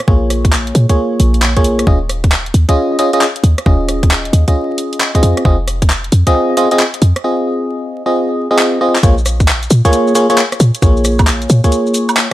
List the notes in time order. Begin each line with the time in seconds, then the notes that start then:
0.00 cross-stick, closed hi-hat
0.08 A#1 A#3 F4 G#4 C#5, kick
0.30 cross-stick, open hi-hat
0.45 kick, closed hi-hat
0.53 clap
0.67 closed hi-hat
0.75 A#2, open hi-hat
0.89 A#3 F4 G#4 C#5, kick, closed hi-hat
1.20 A#1, open hi-hat
1.34 open hi-hat
1.42 clap
1.57 A#3 F4 G#4 C#5, kick, closed hi-hat
1.64 open hi-hat
1.79 cross-stick, closed hi-hat
1.87 D#1 C#4 F4 G#4 D#5, kick
2.09 cross-stick, open hi-hat
2.24 kick, closed hi-hat
2.32 clap
2.46 closed hi-hat
2.54 D#2, open hi-hat
2.69 C#4 F4 G#4 D#5, kick, closed hi-hat
2.99 C#4 F4 G#4 D#5, open hi-hat
3.13 C#4 F4 G#4 D#5, closed hi-hat
3.21 clap
3.36 closed hi-hat
3.44 D#2, open hi-hat
3.58 cross-stick, closed hi-hat
3.66 D#1 C#4 F4 G#4 D#5, kick
3.89 cross-stick, open hi-hat
4.03 kick, closed hi-hat
4.11 clap
4.25 closed hi-hat
4.33 D#2, open hi-hat
4.48 C#4 F4 G#4 D#5, kick, closed hi-hat
4.78 open hi-hat
4.93 open hi-hat
5.00 clap
5.15 C4 F4 G#4 D#5, kick, closed hi-hat
5.23 F2, open hi-hat
5.37 cross-stick, closed hi-hat
5.45 F1 C4 F4 G#4 D#5, kick
5.68 cross-stick, open hi-hat
5.82 kick, closed hi-hat
5.90 clap
6.04 closed hi-hat
6.12 F2, open hi-hat
6.27 C4 F4 G#4 D#5, kick, closed hi-hat
6.57 C4 F4 G#4 D#5, open hi-hat
6.71 C4 F4 G#4 D#5, closed hi-hat
6.79 clap
6.94 closed hi-hat
7.02 F2, open hi-hat
7.16 cross-stick, closed hi-hat
7.24 C4 F4 G#4 D#5
8.06 C4 F4 G#4 D#5
8.51 C4 F4 G#4 D#5
8.59 clap
8.81 C4 F4 G#4 D#5
8.95 clap
9.03 A#1 A#3 F4 G#4 C#5, kick, closed hi-hat, shaker
9.18 shaker
9.26 cross-stick, open hi-hat, shaker
9.40 kick, closed hi-hat, shaker
9.48 clap, shaker
9.63 closed hi-hat, shaker
9.70 A#2, open hi-hat, shaker
9.85 A#3 F4 G#4 C#5, kick, closed hi-hat, shaker
9.93 closed hi-hat, shaker
10.07 shaker
10.15 A#3 F4 G#4 C#5, open hi-hat, shaker
10.30 A#3 F4 G#4 C#5, cross-stick, closed hi-hat, shaker
10.38 clap, shaker
10.52 cross-stick, closed hi-hat, shaker
10.60 A#2, open hi-hat, shaker
10.75 closed hi-hat, shaker
10.82 A#1 A#3 F4 G#4 C#5, kick, closed hi-hat, shaker
10.97 shaker
11.05 cross-stick, open hi-hat, shaker
11.19 kick, closed hi-hat, high woodblock, shaker
11.27 clap, shaker
11.42 closed hi-hat, shaker
11.50 A#2, open hi-hat, shaker
11.64 A#3 F4 G#4 C#5, kick, closed hi-hat, shaker
11.72 closed hi-hat, shaker
11.87 shaker
11.94 open hi-hat, shaker
12.09 closed hi-hat, high woodblock, shaker
12.17 clap, shaker